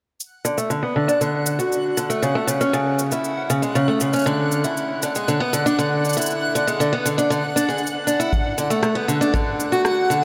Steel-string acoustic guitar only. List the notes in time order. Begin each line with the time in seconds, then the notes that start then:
0.45 D3
0.58 A3
0.70 D3
0.83 B3
0.96 D3
1.08 D4
1.21 D3
1.59 F#4
1.97 D3
2.10 A3
2.22 C#3
2.35 A3
2.47 C#3
2.61 C#4
2.73 C#3
3.12 E4
3.50 C#3
3.62 G#3
3.75 C#3
3.88 A3
4.01 C#3
4.14 C#4
4.26 D3
4.64 E4
5.03 D3
5.16 G#3
5.28 D3
5.40 B3
5.53 D3
5.66 D4
5.79 D3
6.17 E4
6.55 D3
6.67 G#3
6.80 D3
6.93 B3
7.06 D3
7.18 D4
7.30 D3
7.56 D4
7.69 G#4
8.07 D4
8.20 E4
8.58 D3
8.70 A3
8.83 A3
8.95 B3
9.08 D3
9.21 D4
9.34 D3
9.72 F#4
10.10 D3